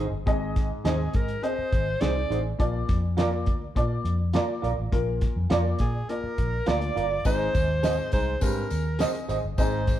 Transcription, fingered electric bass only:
0, 0, Header, 1, 3, 480
1, 0, Start_track
1, 0, Tempo, 582524
1, 218, Time_signature, 4, 2, 24, 8
1, 8237, End_track
2, 0, Start_track
2, 0, Title_t, "Fingered electric bass"
2, 0, Program_c, 0, 33
2, 93, Note_on_c, 0, 31, 77
2, 185, Note_off_c, 0, 31, 0
2, 220, Note_on_c, 0, 32, 102
2, 578, Note_off_c, 0, 32, 0
2, 696, Note_on_c, 0, 39, 78
2, 876, Note_off_c, 0, 39, 0
2, 944, Note_on_c, 0, 44, 79
2, 1121, Note_off_c, 0, 44, 0
2, 1423, Note_on_c, 0, 32, 77
2, 1601, Note_off_c, 0, 32, 0
2, 1662, Note_on_c, 0, 36, 91
2, 1840, Note_off_c, 0, 36, 0
2, 1897, Note_on_c, 0, 33, 75
2, 2076, Note_off_c, 0, 33, 0
2, 2140, Note_on_c, 0, 34, 110
2, 2318, Note_off_c, 0, 34, 0
2, 2383, Note_on_c, 0, 41, 73
2, 2862, Note_off_c, 0, 41, 0
2, 2862, Note_on_c, 0, 38, 83
2, 3039, Note_off_c, 0, 38, 0
2, 3099, Note_on_c, 0, 46, 97
2, 3278, Note_off_c, 0, 46, 0
2, 3333, Note_on_c, 0, 41, 84
2, 3604, Note_off_c, 0, 41, 0
2, 3818, Note_on_c, 0, 34, 84
2, 3907, Note_off_c, 0, 34, 0
2, 3938, Note_on_c, 0, 33, 67
2, 4027, Note_off_c, 0, 33, 0
2, 4057, Note_on_c, 0, 34, 107
2, 4326, Note_off_c, 0, 34, 0
2, 4419, Note_on_c, 0, 41, 80
2, 4508, Note_off_c, 0, 41, 0
2, 4540, Note_on_c, 0, 41, 81
2, 4718, Note_off_c, 0, 41, 0
2, 4780, Note_on_c, 0, 46, 73
2, 4958, Note_off_c, 0, 46, 0
2, 5257, Note_on_c, 0, 34, 77
2, 5436, Note_off_c, 0, 34, 0
2, 5500, Note_on_c, 0, 38, 78
2, 5678, Note_off_c, 0, 38, 0
2, 5738, Note_on_c, 0, 31, 79
2, 5916, Note_off_c, 0, 31, 0
2, 5977, Note_on_c, 0, 32, 87
2, 6155, Note_off_c, 0, 32, 0
2, 6221, Note_on_c, 0, 39, 83
2, 6578, Note_off_c, 0, 39, 0
2, 6702, Note_on_c, 0, 36, 74
2, 6878, Note_off_c, 0, 36, 0
2, 6940, Note_on_c, 0, 44, 84
2, 7117, Note_off_c, 0, 44, 0
2, 7179, Note_on_c, 0, 39, 70
2, 7447, Note_off_c, 0, 39, 0
2, 7655, Note_on_c, 0, 32, 79
2, 7745, Note_off_c, 0, 32, 0
2, 7778, Note_on_c, 0, 31, 75
2, 7866, Note_off_c, 0, 31, 0
2, 7896, Note_on_c, 0, 32, 103
2, 8237, Note_off_c, 0, 32, 0
2, 8237, End_track
3, 0, Start_track
3, 0, Title_t, "Muted fingered electric bass strokes"
3, 1305, Note_on_c, 9, 29, 44
3, 1388, Note_off_c, 9, 29, 0
3, 5138, Note_on_c, 9, 29, 44
3, 5220, Note_off_c, 9, 29, 0
3, 8237, End_track
0, 0, End_of_file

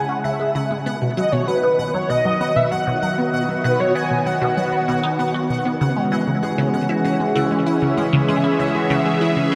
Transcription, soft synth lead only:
0, 0, Header, 1, 2, 480
1, 0, Start_track
1, 0, Key_signature, 4, "minor"
1, 0, Tempo, 618557
1, 667, Time_signature, 4, 2, 24, 8
1, 7411, End_track
2, 0, Start_track
2, 0, Title_t, "Soft synth lead"
2, 0, Program_c, 0, 80
2, 0, Note_on_c, 0, 80, 108
2, 66, Note_on_c, 0, 78, 93
2, 78, Note_off_c, 0, 80, 0
2, 187, Note_on_c, 0, 76, 83
2, 198, Note_off_c, 0, 78, 0
2, 547, Note_off_c, 0, 76, 0
2, 906, Note_on_c, 0, 75, 83
2, 1025, Note_on_c, 0, 73, 82
2, 1036, Note_off_c, 0, 75, 0
2, 1144, Note_on_c, 0, 71, 86
2, 1155, Note_off_c, 0, 73, 0
2, 1503, Note_on_c, 0, 73, 85
2, 1514, Note_off_c, 0, 71, 0
2, 1620, Note_off_c, 0, 73, 0
2, 1625, Note_on_c, 0, 75, 107
2, 1986, Note_on_c, 0, 76, 102
2, 1998, Note_off_c, 0, 75, 0
2, 2106, Note_on_c, 0, 78, 101
2, 2118, Note_off_c, 0, 76, 0
2, 2467, Note_off_c, 0, 78, 0
2, 2828, Note_on_c, 0, 71, 88
2, 2948, Note_on_c, 0, 73, 95
2, 2960, Note_off_c, 0, 71, 0
2, 3067, Note_on_c, 0, 80, 106
2, 3078, Note_off_c, 0, 73, 0
2, 3309, Note_on_c, 0, 78, 101
2, 3320, Note_off_c, 0, 80, 0
2, 4268, Note_off_c, 0, 78, 0
2, 7411, End_track
0, 0, End_of_file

